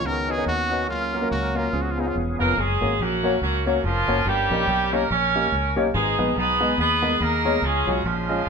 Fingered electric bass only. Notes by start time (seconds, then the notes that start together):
0.04 C#2
0.46 D#2
0.88 C#2
1.31 C#2
1.73 C#2
2.15 E1
2.40 F1
2.57 F#1
2.82 G#1
2.99 A#1
3.42 C#2
3.84 F1
4.08 F#1
4.25 G1
4.50 A#1
4.67 B1
5.11 A#1
5.52 C#2
5.77 B1
5.94 G#1
6.19 A#1
6.37 B1
6.78 D#2
7.21 D#2
7.62 C#2
7.87 B1
8.04 A#1